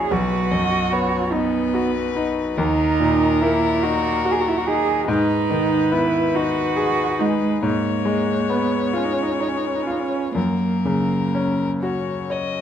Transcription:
Already playing: A#1 C#4 E4 F#4 G#4 C#5
0.11 B1 F#4 B4
0.51 F#2 D#5
0.92 B3 C#5
1.32 B3 D#4 B4
1.74 F#4
2.16 D#4
2.57 D#2 D#4 A#4
3.00 A#2
3.41 A#3 E4
3.83 D#4 F#4
4.25 F#4
4.31 G#4
4.41 F#4
4.48 E4
4.57 F#4
4.67 D#4 G#4
5.08 G#2 D#4 B4
5.50 D#3
5.92 B3 E4
6.34 D#4 F#4
6.76 G#4
7.19 G#3 D#4
7.63 G#2 A#3 C#5
8.05 G#3
8.49 B3
8.93 C#4 F4
9.05 D#4
9.13 C#4
9.22 D#4
9.31 C#4
9.40 D#4 C#5
9.48 C#4
9.57 D#4
9.66 C#4
9.75 D#4
9.83 C#4
9.87 F4
9.91 D#4
10.00 C#4
10.35 F#2 A#3 A#4
10.85 C#3
11.35 C#4
11.83 F#4 C#5
12.30 C#5 D#5

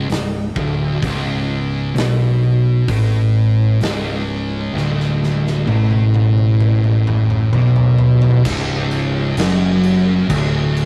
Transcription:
0.09 C#1 C#2, snare, open hi-hat
0.56 D1 D2, kick
1.02 C#1 C#2, kick, open hi-hat
1.95 B1 B2, snare, open hi-hat
2.88 A1 A2, kick, open hi-hat
3.81 C#1 C#2, snare, open hi-hat
4.74 D1 D2, snare
5.00 snare
5.23 snare
5.47 snare
5.67 A1 A2, high tom
5.91 high tom
6.14 high tom
6.38 mid tom
6.61 mid tom
6.84 mid tom
7.07 mid tom
7.30 mid tom
7.52 B1 B2, mid tom
7.76 floor tom
7.99 floor tom
8.22 floor tom
8.45 C#1 C#2, kick, crash
8.91 crash
9.37 F#1 F#2, snare, crash
9.83 crash
10.30 D1 D2, kick, crash
10.77 crash

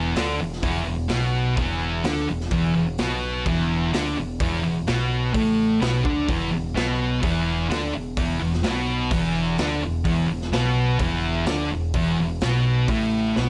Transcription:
Already playing: E1 E2 E3
0.16 D2 D3 D4, snare, open hi-hat
0.40 E1 E2
0.53 snare
0.63 E1 E2 E3, kick, open hi-hat
0.85 E1 E2
1.09 B1 B2 B3, snare, open hi-hat
1.56 E1 E2 E3, kick, open hi-hat
2.04 D2 D3 D4, snare, open hi-hat
2.28 E1 E2
2.41 snare
2.51 E1 E2 E3, kick, open hi-hat
2.75 E1 E2
2.98 B1 B2 B3, snare, open hi-hat
3.46 E1 E2 E3, kick, open hi-hat
3.92 D2 D3 D4, snare, open hi-hat
4.17 E1 E2
4.40 E1 E2 E3, kick, open hi-hat
4.64 E1 E2
4.87 B1 B2 B3, snare, open hi-hat
5.33 A1 A2 A3, kick, open hi-hat
5.81 B1 B2 B3, snare, open hi-hat
6.04 D2 D3 D4, kick
6.28 E1 E2 E3, kick, open hi-hat
6.52 E1 E2
6.74 B1 B2 B3, snare, open hi-hat
7.20 E1 E2 E3, kick, open hi-hat
7.69 D2 D3 D4, snare, open hi-hat
7.93 E1 E2
8.17 E1 E2 E3, kick, open hi-hat
8.40 E1 E2
8.53 snare
8.63 B1 B2 B3, snare, open hi-hat
9.11 E1 E2 E3, kick, open hi-hat
9.58 D2 D3 D4, snare, open hi-hat
9.82 E1 E2
10.04 E1 E2 E3, kick, open hi-hat
10.28 E1 E2
10.42 snare
10.51 B1 B2 B3, snare, open hi-hat
10.99 E1 E2 E3, kick, open hi-hat
11.46 D2 D3 D4, snare, open hi-hat
11.70 E1 E2
11.94 E1 E2 E3, kick, open hi-hat
12.19 E1 E2
12.41 B1 B2 B3, snare, open hi-hat
12.88 A1 A2 A3, kick, open hi-hat
13.36 B1 B2 B3, snare

